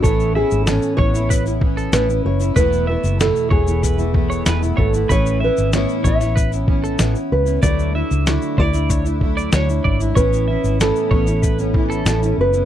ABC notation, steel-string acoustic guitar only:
X:1
M:4/4
L:1/16
Q:1/4=95
K:A
V:1 name="Steel-string acoustic guitar"
[A,,E,B,CE]2 [E,B,CE]2 [A,,E,B,CE]2 [E,B,CE] [B,CE]2 [B,CE] [E,B,CE]2 [A,,E,B,CE] [B,CE]2 [B,CE] | [E,,B,,E,A,B,E]2 [E,A,B,E]2 [E,,B,,E,A,B,E]2 [E,A,B,E] [E,A,B,E]2 [E,A,B,E] [E,A,B,E]2 [E,,B,,E,A,B,E] [E,A,B,E]2 [E,A,B,E] | [A,,E,B,CE]2 [E,B,CE]2 [A,,E,B,CE]2 [E,B,CE] [B,CE]2 [B,CE] [E,B,CE]2 [A,,E,B,CE] [B,CE]2 [B,CE] | [D,F,A,DE]2 [F,A,DE]2 [D,F,A,DE]2 [F,A,DE] [A,DE]2 [A,DE] [F,A,DE]2 [D,F,A,DE] [A,DE]2 [A,DE] |
[A,,E,B,CE]2 [E,B,CE]2 [A,,E,B,CE]2 [E,B,CE] [B,CE]2 [B,CE] [E,B,CE]2 [A,,E,B,CE] [B,CE]2 [B,CE] |]